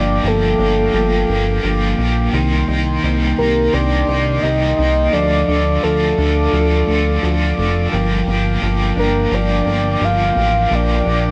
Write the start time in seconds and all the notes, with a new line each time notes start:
Already playing: G1 F3 A#3 D4 G4 D5 F5 G5 D6
0.23 G1 G2 D3 F3 A#3 D4 G4
0.27 A4
0.57 G1 F3 A#3 D4 G4
0.93 G1 F3 A#3 D4 G4
1.27 G1 F3 A#3 D4 G4
1.63 G1 G2 D3 F3 A#3 D4 G4
1.99 A#1 F3 A#3 D4 G4
2.33 C2 C3 D#3 G3 A#3 D#4 A#4 C6
2.68 C2 A#3 D#4 A#4
3.03 C2 C3 G3 A#3 D#4 A#4
3.37 C2 A#3 D#4 G4 A#4
3.72 C2 G3 A#3 D#4 A#4 D5
4.07 C2 A#3 D#4 A#4
4.42 C2 C3 G3 A#3 D#4 D#5
4.46 A#4
4.77 C2 D#4 A#4 D#5
4.82 A#3
5.12 D2 D3 F3 D4 F4 A4 D5 F5 D6
5.48 D2 A3 D4 F4 A4 D5
5.83 D2 D3 F3 D4 F4 A4
6.18 D2 D4 F4 A4
6.53 D2 F3 D4 F4 A4
6.87 D2 A3 D4 F4 A4
7.23 D2 D3 F3 D4 F4 A4
7.57 F1 A3 D4 F4 A4
7.92 G1 G2 D3 F3 A#3 D4 G4 A#4 G5
8.27 G1 F3 A#3 D4 G4
8.62 G1 G2 D3 F3 A#3 D4 G4
8.96 G1 F3 A#3 D4 G4 A#4
9.31 G1 F3 A#3 D4 G4 D5
9.66 G1 F3 A#3 D4 G4
10.01 G1 G2 D3 F3 A#3 D4 G4 F5
10.35 A1 F3 A#3 D4 G4
10.71 A#1 A#2 D3 F3 A#3 D4 G4 A#4 D5
11.06 A#1 F3 A#3 D4 G4